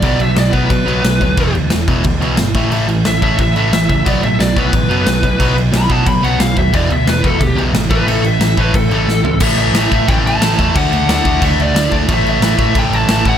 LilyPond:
<<
  \new Staff \with { instrumentName = "Lead electric guitar" } { \time 4/4 \key a \mixolydian \tempo 4 = 179 d''8 e''8 d''8 b'2~ b'8~ | b'8 r2. r8 | r4 e''8 e''8 e''8 e''8 e''8 e''8 | d''8 e''8 d''8 b'2~ b'8~ |
b'8 r8 b''8 a''8 b''8 fis''8 eis''8 e''8 | d''8 e''8 b'8 a'8 g'8 r4 b'8 | a'8 e''4 b'8 a'2 | e''8 e''4. g''8 a''4. |
fis''4 fis''4 e''8 d''4 r8 | e''8 e''4. g''8 a''4 fis''8 | }
  \new Staff \with { instrumentName = "Distorted electric guitar" } { \clef bass \time 4/4 \key a \mixolydian <b, fis b>8 <b, fis>8 <b, fis>8 <b, fis b>8 <b, fis>8 <b, fis b>8 <b, fis>8 <b, fis>8 | <e, b, e>8 <e, b,>8 <e, b,>8 <e, b, e>8 <e, b,>8 <e, b, e>8 <e, b,>8 <a, e a>8 | <a, e a>8 <a, e>8 <a, e>8 <a, e a>8 <a, e>8 <a, e a>8 <a, e>8 <a, e>8 | <b, fis b>8 <b, fis>8 <b, fis>8 <b, fis b>8 <b, fis>8 <b, fis b>8 <b, fis>8 <b, fis>8 |
<b, fis b>8 <b, fis>8 <b, fis>8 <b, fis b>8 <b, fis>8 <b, fis b>8 <b, fis>8 <b, fis>8 | <e, b, e>8 <e, b,>8 <e, b,>8 <e, b, e>8 <e, b,>8 <e, b, e>8 <e, b,>8 <a, e a>8 | <a, e a>8 <a, e>8 <a, e>8 <a, e a>8 <a, e>8 <a, e a>8 <a, e>8 <a, e>8 | <a, e a>4 <a, e a>8 <a, e a>8 <a, e a>4 <a, e a>8 <a, e a>8 |
<d a d'>4 <d a d'>8 <d a d'>8 <d a d'>4 <d a d'>8 <d a d'>8 | <a, e a>4 <a, e a>8 <a, e a>8 <a, e a>4 <a, e a>8 <a, e a>8 | }
  \new Staff \with { instrumentName = "Distorted electric guitar" } { \clef bass \time 4/4 \key a \mixolydian <b, fis b>8 <b, fis>8 <b, fis>8 <b, fis b>8 <b, fis>8 <b, fis b>8 <b, fis>8 <b, fis>8 | <e, b, e>8 <e, b,>8 <e, b,>8 <e, b, e>8 <e, b,>8 <e, b, e>8 <e, b,>8 <a, e a>8 | <a, e a>8 <a, e>8 <a, e>8 <a, e a>8 <a, e>8 <a, e a>8 <a, e>8 <a, e>8 | <b, fis b>8 <b, fis>8 <b, fis>8 <b, fis b>8 <b, fis>8 <b, fis b>8 <b, fis>8 <b, fis>8 |
<b, fis b>8 <b, fis>8 <b, fis>8 <b, fis b>8 <b, fis>8 <b, fis b>8 <b, fis>8 <b, fis>8 | <e, b, e>8 <e, b,>8 <e, b,>8 <e, b, e>8 <e, b,>8 <e, b, e>8 <e, b,>8 <a, e a>8 | <a, e a>8 <a, e>8 <a, e>8 <a, e a>8 <a, e>8 <a, e a>8 <a, e>8 <a, e>8 | <a, e a>4 <a, e a>8 <a, e a>8 <a, e a>4 <a, e a>8 <a, e a>8 |
<d a d'>4 <d a d'>8 <d a d'>8 <d a d'>4 <d a d'>8 <d a d'>8 | <a, e a>4 <a, e a>8 <a, e a>8 <a, e a>4 <a, e a>8 <a, e a>8 | }
  \new Staff \with { instrumentName = "Picked electric bass" } { \clef bass \time 4/4 \key a \mixolydian b,,4 b,,8 b,,8 b,8 b,,8 b,,8 d,8 | e,,8 d,8 e,,8 e,,8 d,8 b,,8 g,,8 a,,8 | a,,4 a,,8 a,,8 a,8 a,,8 a,,8 cis,8 | b,,8 a,8 b,,8 b,,8 a,,8 fis,8 b,,8 b,,8 |
b,,4 b,,8 b,,8 b,8 b,,8 b,,8 dis,8 | e,,8 d,8 e,,8 e,,8 d,8 b,,8 gis,,8 a,,8 | a,,4 a,,8 a,,8 a,8 a,,8 a,,8 cis,8 | a,,8 a,,8 a,,8 a,,8 a,,8 a,,8 a,,8 e,8 |
d,8 d,8 d,8 d,8 d,8 d,8 d,8 d,8 | a,,8 a,,8 a,,8 a,,8 a,,8 a,,8 a,,8 a,,8 | }
  \new DrumStaff \with { instrumentName = "Drums" } \drummode { \time 4/4 <cymc bd>8 cymc8 <cymc sn>8 <cymc bd>8 <cymc bd>8 cymc8 <cymc sn>8 <cymc bd>8 | <cymc bd>8 cymc8 <cymc sn>8 <cymc bd>8 <cymc bd>8 cymc8 <cymc sn>8 <cymc bd>8 | cymc8 cymc8 <cymc sn>8 <cymc bd>8 <cymc bd>8 cymc8 <cymc sn>8 <cymc bd>8 | <cymc bd>8 cymc8 <cymc sn>8 <cymc bd>8 <cymc bd>8 cymc8 <cymc sn>8 <cymc bd>8 |
<cymc bd>8 cymc8 <cymc sn>8 <cymc bd>8 <cymc bd>8 cymc8 <cymc sn>8 <cymc bd>8 | <cymc bd>8 cymc8 <cymc sn>8 <cymc bd>8 <cymc bd>8 cymc8 <cymc sn>8 <cymc bd>8 | cymc8 cymc8 <cymc sn>8 <cymc bd>8 <cymc bd>8 cymc8 sn8 tomfh8 | <cymc bd>8 cymc8 <cymc sn>8 <cymc bd>8 <cymc bd>8 cymc8 <cymc sn>8 <cymc bd>8 |
<cymc bd>8 cymc8 <cymc sn>8 <cymc bd>8 <cymc bd>8 cymc8 <cymc sn>8 <cymc bd>8 | <cymc bd>8 cymc8 <cymc sn>8 <cymc bd>8 <cymc bd>8 cymc8 <cymc sn>8 <cymc bd>8 | }
>>